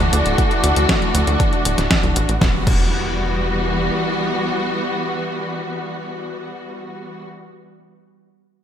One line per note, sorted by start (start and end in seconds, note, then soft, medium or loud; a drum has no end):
0.00 0.10 D2 medium
0.00 2.38 E3 medium
0.00 2.38 A3 medium
0.00 2.38 D4 medium
0.00 2.38 F#4 medium
0.00 closed hi-hat soft
0.13 0.23 D2 medium
0.13 closed hi-hat medium
0.26 0.36 D1 medium
0.26 closed hi-hat medium
0.38 kick loud
0.38 closed hi-hat soft
0.51 closed hi-hat soft
0.64 0.74 D2 medium
0.64 closed hi-hat medium
0.76 0.86 D2 medium
0.76 closed hi-hat medium
0.89 kick loud
0.89 snare loud
0.89 closed hi-hat medium
1.02 closed hi-hat soft
1.14 1.24 D2 medium
1.14 closed hi-hat medium
1.27 1.37 D2 medium
1.27 closed hi-hat medium
1.40 kick loud
1.40 closed hi-hat medium
1.53 closed hi-hat soft
1.65 1.75 D1 medium
1.65 closed hi-hat medium
1.78 1.88 D1 medium
1.78 snare soft
1.78 closed hi-hat soft
1.91 kick loud
1.91 snare loud
1.91 closed hi-hat soft
2.03 2.13 C2 medium
2.03 closed hi-hat soft
2.16 2.26 A1 medium
2.16 closed hi-hat medium
2.29 2.39 A1 medium
2.29 closed hi-hat medium
2.41 2.56 E1 medium
2.41 7.24 E3 medium
2.41 7.24 G3 medium
2.41 7.24 B3 medium
2.41 7.24 F#4 medium
2.41 kick loud
2.41 snare medium
2.41 impact medium
2.67 3.90 E1 medium
2.67 kick loud
2.67 crash medium